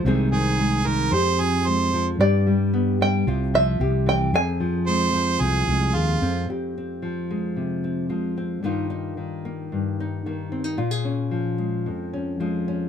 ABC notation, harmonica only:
X:1
M:4/4
L:1/16
Q:1/4=112
K:Fm
V:1 name="Harmonica"
z2 A4 B2 c2 A2 c3 z | z16 | z4 c4 A4 F4 | z16 |
z16 | z16 |]